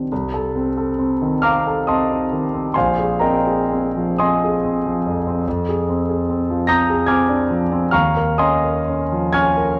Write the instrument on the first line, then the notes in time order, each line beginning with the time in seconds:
grand piano
Already playing: D#3 C4 D4 G4
0.12 C2
0.34 A4
0.55 C4
0.77 A4
0.99 C4
1.22 D#3
1.42 C4 F5 A#5 D6 F6
1.67 A4
1.87 C4 D#5 A5 C6 D#6
2.11 D#4
2.32 D#3
2.54 C4
2.74 A#1 C5 F5 G#5 C6
2.99 G#4
3.20 C4 A#4 D#5 G5 A#5
3.47 G#4
3.72 C4
3.97 F3
4.18 C4 D#5 G#5 C6 D#6
4.44 G#4
4.65 C4
4.87 F3
5.06 F2
5.27 C4
5.48 F2
5.69 G#4
5.89 C4
6.09 G#4
6.30 C4
6.50 F3
6.67 C4 A#5 D#6 G6 A#6
6.90 G#4
7.06 C4 G#5 D6 F6 G#6
7.29 D4
7.50 F3
7.72 C4
7.91 D#2 F5 A#5 C#6 F6
8.16 A#4
8.38 C#4 D#5 G#5 C6 D#6
8.64 A#4
8.89 C#4
9.12 F3
9.33 C#4 G#5 C#6 F6 G#6
9.57 A#4